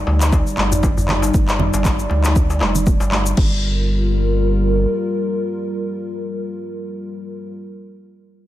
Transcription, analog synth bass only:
0.07 D2
0.58 G1
0.97 G1
1.34 G1
1.74 G1
2.10 D2
2.61 F1
3.01 G1
3.38 G1

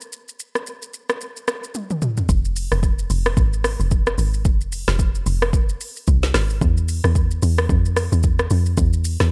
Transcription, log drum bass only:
2.29 F1
2.72 F1
3.10 F1
3.37 G#1
3.80 F1
4.18 G#1
4.45 F1
4.88 F1
5.26 F1
6.08 C2
6.34 G#1
6.61 E2
7.04 E2
7.43 E2
7.69 F2
8.12 E2
8.51 F2
8.78 E2
9.20 E2

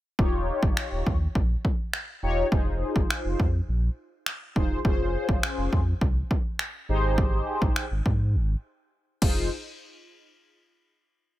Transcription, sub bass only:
0.19 D#1
0.63 G1
0.92 D#1
1.07 D#2
1.35 A#1
2.23 E1
2.52 F1
2.96 G#1
3.25 F1
3.40 F2
3.68 A#1
4.56 E1
4.85 F1
5.29 G#1
5.58 F1
5.73 F2
6.01 C2
6.89 G#1
7.62 A#1
7.91 G#1
8.06 G#2
8.34 G#1
9.22 F1

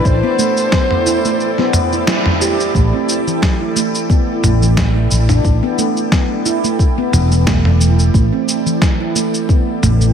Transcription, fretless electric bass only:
0.05 A1
2.75 A1
4.43 A1
5.11 A1
5.45 A1
7.13 E1
8.14 A1
9.83 A1

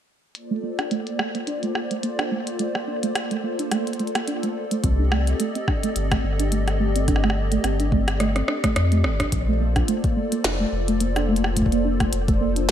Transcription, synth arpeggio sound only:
0.51 A3
0.63 A#3
0.79 D4
0.91 A3
1.19 A3
1.35 A#3
1.47 D4
1.63 A3
1.91 A3
2.03 A#3
2.19 D4
2.31 A3
2.59 A3
2.75 A#3
2.87 D4
3.03 A3
3.31 A3
3.44 A#3
3.59 D4
3.72 A3
4.00 A3
4.15 A#3
4.28 D4
4.43 A3
4.71 A3
4.84 C4
4.99 D4
5.12 A3
5.40 A3
5.55 C4
5.68 D4
5.83 A3
6.12 A3
6.24 C4
6.40 D4
6.52 A3
6.80 A3
6.96 C4
7.08 D4
7.24 A3
7.52 A3
7.64 C4
7.80 D4
7.92 A3
8.20 A3
8.36 C4
8.48 D4
8.64 A3
8.92 A3
9.04 C4
9.20 D4
9.48 A3
9.60 A#3
9.76 D4
9.88 A3
10.16 A3
10.32 A#3
10.44 D4
10.60 A3
10.88 A3
11.01 A#3
11.16 D4
11.29 A3
11.57 A3
11.72 A#3
11.85 D4
12.00 A3
12.28 A3
12.41 A#3
12.56 D4

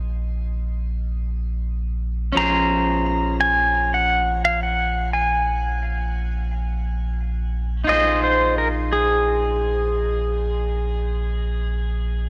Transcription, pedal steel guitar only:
2.37 A#5
3.41 G#5
3.94 F#5
4.45 F5
4.63 F#5
5.13 G#5
7.89 D#5
8.24 C5
8.58 A#4
8.93 G#4

